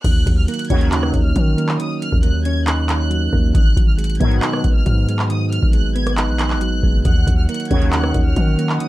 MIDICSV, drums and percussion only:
0, 0, Header, 1, 2, 480
1, 0, Start_track
1, 0, Key_signature, -6, "minor"
1, 0, Tempo, 437956
1, 48, Time_signature, 4, 2, 24, 8
1, 9736, End_track
2, 0, Start_track
2, 0, Title_t, "Drums"
2, 49, Note_on_c, 9, 36, 118
2, 49, Note_on_c, 9, 42, 83
2, 49, Note_on_c, 9, 49, 102
2, 158, Note_off_c, 9, 36, 0
2, 158, Note_off_c, 9, 42, 0
2, 158, Note_off_c, 9, 49, 0
2, 289, Note_on_c, 9, 36, 97
2, 295, Note_on_c, 9, 42, 94
2, 399, Note_off_c, 9, 36, 0
2, 405, Note_off_c, 9, 42, 0
2, 529, Note_on_c, 9, 42, 88
2, 589, Note_off_c, 9, 42, 0
2, 589, Note_on_c, 9, 42, 73
2, 649, Note_off_c, 9, 42, 0
2, 649, Note_on_c, 9, 42, 67
2, 708, Note_off_c, 9, 42, 0
2, 708, Note_on_c, 9, 42, 54
2, 768, Note_off_c, 9, 42, 0
2, 768, Note_on_c, 9, 36, 89
2, 768, Note_on_c, 9, 42, 78
2, 878, Note_off_c, 9, 36, 0
2, 878, Note_off_c, 9, 42, 0
2, 889, Note_on_c, 9, 42, 44
2, 998, Note_off_c, 9, 42, 0
2, 1008, Note_on_c, 9, 39, 127
2, 1014, Note_on_c, 9, 42, 90
2, 1118, Note_off_c, 9, 39, 0
2, 1124, Note_off_c, 9, 42, 0
2, 1128, Note_on_c, 9, 37, 100
2, 1238, Note_off_c, 9, 37, 0
2, 1246, Note_on_c, 9, 42, 69
2, 1249, Note_on_c, 9, 36, 96
2, 1355, Note_off_c, 9, 42, 0
2, 1359, Note_off_c, 9, 36, 0
2, 1487, Note_on_c, 9, 42, 80
2, 1489, Note_on_c, 9, 36, 91
2, 1597, Note_off_c, 9, 42, 0
2, 1598, Note_off_c, 9, 36, 0
2, 1734, Note_on_c, 9, 42, 80
2, 1843, Note_off_c, 9, 42, 0
2, 1849, Note_on_c, 9, 39, 95
2, 1959, Note_off_c, 9, 39, 0
2, 1970, Note_on_c, 9, 42, 80
2, 2079, Note_off_c, 9, 42, 0
2, 2216, Note_on_c, 9, 42, 95
2, 2325, Note_off_c, 9, 42, 0
2, 2328, Note_on_c, 9, 36, 108
2, 2437, Note_off_c, 9, 36, 0
2, 2444, Note_on_c, 9, 42, 85
2, 2553, Note_off_c, 9, 42, 0
2, 2688, Note_on_c, 9, 42, 77
2, 2797, Note_off_c, 9, 42, 0
2, 2928, Note_on_c, 9, 39, 125
2, 2934, Note_on_c, 9, 42, 89
2, 3037, Note_off_c, 9, 39, 0
2, 3043, Note_off_c, 9, 42, 0
2, 3166, Note_on_c, 9, 42, 68
2, 3169, Note_on_c, 9, 39, 102
2, 3276, Note_off_c, 9, 42, 0
2, 3279, Note_off_c, 9, 39, 0
2, 3407, Note_on_c, 9, 42, 77
2, 3516, Note_off_c, 9, 42, 0
2, 3647, Note_on_c, 9, 36, 98
2, 3757, Note_off_c, 9, 36, 0
2, 3888, Note_on_c, 9, 36, 119
2, 3889, Note_on_c, 9, 42, 83
2, 3998, Note_off_c, 9, 36, 0
2, 3998, Note_off_c, 9, 42, 0
2, 4129, Note_on_c, 9, 36, 94
2, 4135, Note_on_c, 9, 42, 92
2, 4238, Note_off_c, 9, 36, 0
2, 4244, Note_off_c, 9, 42, 0
2, 4368, Note_on_c, 9, 42, 87
2, 4428, Note_off_c, 9, 42, 0
2, 4428, Note_on_c, 9, 42, 74
2, 4489, Note_off_c, 9, 42, 0
2, 4489, Note_on_c, 9, 42, 65
2, 4549, Note_off_c, 9, 42, 0
2, 4549, Note_on_c, 9, 42, 53
2, 4609, Note_off_c, 9, 42, 0
2, 4609, Note_on_c, 9, 36, 93
2, 4609, Note_on_c, 9, 42, 77
2, 4718, Note_off_c, 9, 36, 0
2, 4719, Note_off_c, 9, 42, 0
2, 4729, Note_on_c, 9, 42, 44
2, 4839, Note_off_c, 9, 42, 0
2, 4848, Note_on_c, 9, 39, 124
2, 4854, Note_on_c, 9, 42, 87
2, 4958, Note_off_c, 9, 39, 0
2, 4964, Note_off_c, 9, 42, 0
2, 4968, Note_on_c, 9, 37, 98
2, 5078, Note_off_c, 9, 37, 0
2, 5086, Note_on_c, 9, 42, 68
2, 5089, Note_on_c, 9, 36, 95
2, 5196, Note_off_c, 9, 42, 0
2, 5199, Note_off_c, 9, 36, 0
2, 5327, Note_on_c, 9, 42, 78
2, 5329, Note_on_c, 9, 36, 90
2, 5436, Note_off_c, 9, 42, 0
2, 5438, Note_off_c, 9, 36, 0
2, 5574, Note_on_c, 9, 42, 80
2, 5683, Note_off_c, 9, 42, 0
2, 5689, Note_on_c, 9, 39, 97
2, 5798, Note_off_c, 9, 39, 0
2, 5809, Note_on_c, 9, 42, 82
2, 5918, Note_off_c, 9, 42, 0
2, 6055, Note_on_c, 9, 42, 90
2, 6165, Note_off_c, 9, 42, 0
2, 6168, Note_on_c, 9, 36, 102
2, 6277, Note_off_c, 9, 36, 0
2, 6283, Note_on_c, 9, 42, 87
2, 6393, Note_off_c, 9, 42, 0
2, 6528, Note_on_c, 9, 42, 65
2, 6638, Note_off_c, 9, 42, 0
2, 6649, Note_on_c, 9, 37, 93
2, 6649, Note_on_c, 9, 42, 64
2, 6758, Note_off_c, 9, 42, 0
2, 6759, Note_off_c, 9, 37, 0
2, 6768, Note_on_c, 9, 39, 127
2, 6774, Note_on_c, 9, 42, 88
2, 6878, Note_off_c, 9, 39, 0
2, 6884, Note_off_c, 9, 42, 0
2, 7005, Note_on_c, 9, 42, 69
2, 7009, Note_on_c, 9, 39, 99
2, 7115, Note_off_c, 9, 42, 0
2, 7119, Note_off_c, 9, 39, 0
2, 7127, Note_on_c, 9, 39, 70
2, 7237, Note_off_c, 9, 39, 0
2, 7246, Note_on_c, 9, 42, 77
2, 7355, Note_off_c, 9, 42, 0
2, 7487, Note_on_c, 9, 36, 97
2, 7597, Note_off_c, 9, 36, 0
2, 7727, Note_on_c, 9, 42, 83
2, 7728, Note_on_c, 9, 36, 115
2, 7837, Note_off_c, 9, 36, 0
2, 7837, Note_off_c, 9, 42, 0
2, 7968, Note_on_c, 9, 36, 97
2, 7974, Note_on_c, 9, 42, 92
2, 8078, Note_off_c, 9, 36, 0
2, 8084, Note_off_c, 9, 42, 0
2, 8208, Note_on_c, 9, 42, 88
2, 8268, Note_off_c, 9, 42, 0
2, 8268, Note_on_c, 9, 42, 76
2, 8328, Note_off_c, 9, 42, 0
2, 8328, Note_on_c, 9, 42, 66
2, 8388, Note_off_c, 9, 42, 0
2, 8388, Note_on_c, 9, 42, 53
2, 8447, Note_off_c, 9, 42, 0
2, 8447, Note_on_c, 9, 42, 77
2, 8448, Note_on_c, 9, 36, 90
2, 8557, Note_off_c, 9, 36, 0
2, 8557, Note_off_c, 9, 42, 0
2, 8568, Note_on_c, 9, 42, 45
2, 8677, Note_off_c, 9, 42, 0
2, 8687, Note_on_c, 9, 39, 127
2, 8693, Note_on_c, 9, 42, 84
2, 8797, Note_off_c, 9, 39, 0
2, 8803, Note_off_c, 9, 42, 0
2, 8807, Note_on_c, 9, 37, 99
2, 8917, Note_off_c, 9, 37, 0
2, 8925, Note_on_c, 9, 42, 69
2, 8929, Note_on_c, 9, 36, 97
2, 9035, Note_off_c, 9, 42, 0
2, 9038, Note_off_c, 9, 36, 0
2, 9166, Note_on_c, 9, 42, 79
2, 9168, Note_on_c, 9, 36, 91
2, 9276, Note_off_c, 9, 42, 0
2, 9278, Note_off_c, 9, 36, 0
2, 9413, Note_on_c, 9, 42, 83
2, 9522, Note_off_c, 9, 42, 0
2, 9528, Note_on_c, 9, 39, 97
2, 9638, Note_off_c, 9, 39, 0
2, 9648, Note_on_c, 9, 42, 82
2, 9736, Note_off_c, 9, 42, 0
2, 9736, End_track
0, 0, End_of_file